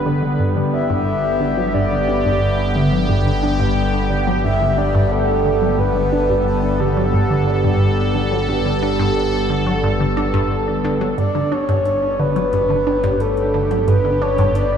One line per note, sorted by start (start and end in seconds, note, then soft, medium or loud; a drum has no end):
0.00 0.36 G1 medium
0.00 11.14 D3 medium
0.00 11.14 G3 medium
0.00 11.14 B3 medium
0.00 0.39 B4 medium
0.06 0.19 D3 medium
0.23 0.28 D3 medium
0.39 11.15 G1 medium
0.39 0.48 G2 medium
0.39 5.78 G4 medium
0.57 0.62 D3 medium
0.73 0.82 D4 medium
0.73 1.76 E5 loud
0.90 0.99 G2 loud
1.41 1.54 D3 medium
1.58 1.63 F#3 medium
1.74 1.83 G2 medium
1.74 2.75 D5 loud
1.91 1.97 D3 medium
2.08 2.17 D4 medium
2.25 2.34 G2 loud
2.76 2.89 D3 medium
2.92 2.98 F#3 medium
3.09 3.18 G2 medium
3.09 4.40 G5 loud
3.26 3.31 D3 medium
3.43 3.52 D4 medium
3.60 3.69 G2 loud
4.10 4.24 D3 medium
4.27 4.33 F#3 medium
4.44 4.53 G2 medium
4.44 4.79 E5 loud
4.61 4.66 D3 medium
4.78 4.87 D4 medium
4.78 5.13 D5 medium
4.95 5.03 G2 loud
5.12 5.81 A4 medium
5.45 5.58 D3 medium
5.62 5.67 F#3 medium
5.79 5.88 G2 medium
5.79 11.17 A4 medium
5.79 6.46 B4 loud
5.96 6.01 D3 medium
6.13 6.21 D4 medium
6.29 6.38 G2 loud
6.47 6.82 B4 medium
6.80 6.93 D3 medium
6.80 10.51 G4 medium
6.97 7.02 F#3 medium
7.14 7.23 G2 medium
7.31 7.36 D3 medium
7.47 7.56 D4 medium
7.64 7.73 G2 loud
8.15 8.28 D3 medium
8.32 8.37 F#3 medium
8.48 8.57 G2 medium
8.66 8.71 D3 medium
8.83 8.91 D4 medium
8.99 9.08 G2 loud
9.50 9.63 D3 medium
9.67 9.72 F#3 medium
9.83 9.92 G2 medium
10.00 10.06 D3 medium
10.17 10.26 D4 medium
10.34 10.43 G2 loud
10.84 10.98 D3 medium
11.01 11.07 F#3 medium
11.18 14.78 G1 medium
11.18 11.27 G2 medium
11.18 14.78 D3 medium
11.18 14.78 G3 medium
11.18 14.78 B3 medium
11.18 14.78 D4 medium
11.18 14.78 G4 medium
11.18 11.53 D5 medium
11.18 closed hi-hat medium
11.35 11.40 D3 medium
11.52 11.61 D4 medium
11.52 12.21 C#5 loud
11.52 low woodblock medium
11.69 11.78 G2 loud
11.69 closed hi-hat soft
11.85 closed hi-hat medium
12.19 12.33 D3 medium
12.19 13.22 B4 loud
12.36 12.41 F#3 medium
12.36 closed hi-hat soft
12.53 12.62 G2 medium
12.53 closed hi-hat medium
12.70 12.75 D3 medium
12.87 12.96 D4 medium
13.04 13.12 G2 loud
13.04 closed hi-hat soft
13.20 13.88 A4 medium
13.20 closed hi-hat medium
13.37 closed hi-hat soft
13.54 13.67 D3 medium
13.71 13.76 F#3 medium
13.71 closed hi-hat medium
13.71 low woodblock medium
13.88 13.97 G2 medium
13.88 14.23 B4 loud
13.88 closed hi-hat medium
14.05 14.10 D3 medium
14.21 14.30 D4 medium
14.21 14.55 C#5 loud
14.21 low woodblock medium
14.38 14.47 G2 loud
14.38 closed hi-hat medium
14.55 14.78 D5 loud
14.55 closed hi-hat medium
14.72 low woodblock medium